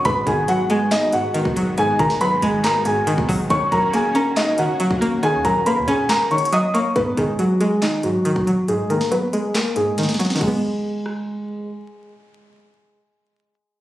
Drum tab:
CC |------------------------------------------------------------------------------------------------|------------------------------------------------------------------------------------------------|------------------------------------------------------------------------------------------------|------------------------------------------------------------------------------------------------|
HH |x-----------x-----------x-----------x-----------x-----------x-----------x-----------x-----------|x-----------x-----------x-----------x-----------x-----------x-----------x-----------o-----------|x-----------x-----------x-----------x-----------x-----------x-----------x-----------x-----------|x-----------x-----------x-----------x-----------x-----------x---x---x---x-----------x-----------|
CP |------------------------------------------------x-----------------------------------------------|------------------------------------------------x-----------------------------------------------|------------------------------------------------x-----------------------------------------------|------------------------------------------------x-----------------------------------------------|
SD |------------------------------------------------o-----------------------------------------------|------------------o-----------------------------o-----------------------------------------------|------------------------------------------------o-----------------------------------------------|------------------------------------------------o-----------------------------------------------|
BD |o-----------o-----------------------------------------------------------------o-----------------|------------o-----------------------------------------------------------------o-----o-----------|o-----------o-----------------------------------------------------------------o-----------------|------------o-----------------------------------------------------------------------------------|

CC |------------------------------------------------------------------------------------------------|------------------------------------------------------------------------------------------------|x-----------------------------------------------------------------------------------------------|------------------------------------------------------------------------------------------------|
HH |x-----------x-----------x-----------x-----------x-----------x-----------x-----------x-----------|x-----------x-----------x-----------x-----------x-----------x-----------x-----------x-----------|------------------------------------------------------------------------------------------------|------------------------------------------------------------------------------------------------|
CP |------------------------------------------------x-----------------------------------------------|------------------------------------------------x-----------------------------------------------|------------------------------------------------------------------------------------------------|------------------------------------------------------------------------------------------------|
SD |------------------------------------------------o-----------------------------------------------|------------------o-----------------------------o-----------------------o--o--o--o--o--o--o--o--|------------------------------------r-----------------------------------------------------------|------------------------------------------------------------------------------------------------|
BD |o-----------o-----------------------------------------------------------------o-----------------|------------------------------------------------------------------------------------------------|o-----------------------------------------------------------------------------------------------|------------------------------------------------------------------------------------------------|